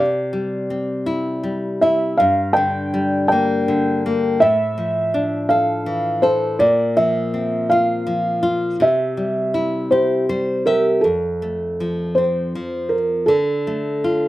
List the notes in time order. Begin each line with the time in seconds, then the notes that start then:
Already playing: C3 D5
0.33 G3
0.70 C4
1.06 E4
1.44 G3
1.81 E4 E5
2.17 G2 F5
2.53 D3 G5
2.94 G3
3.28 A#3 G5
3.68 D3
4.06 A#3
4.40 A2 E5
4.78 F3
5.14 D4
5.49 A4 F5
5.86 E3
6.22 A4 C5
6.59 A#2 D5
6.97 F3 E5
7.34 C4
7.70 F4 F5
8.07 F3
8.43 F4
8.80 C3 E5
9.17 G3
9.54 E4
9.91 G4 C5
10.29 G3 C5
10.66 G4 A#4 E5
11.01 F2 A4
11.42 A3
11.80 F3
12.15 C4 C5
12.55 F3
12.89 A#4
13.26 D3 A4
13.67 A3
14.04 F4